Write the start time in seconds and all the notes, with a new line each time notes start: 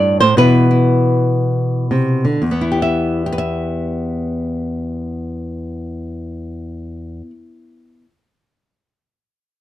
Already playing: G2 A2 A3 E4 A4 D5
0.20 A2 C5
0.37 B2 E3 E4 B4
0.71 E4
1.91 C3
2.25 D3
2.42 E2
2.51 B3
2.61 E4
2.72 G4
2.82 E5
3.26 G4
3.32 B4
3.38 E5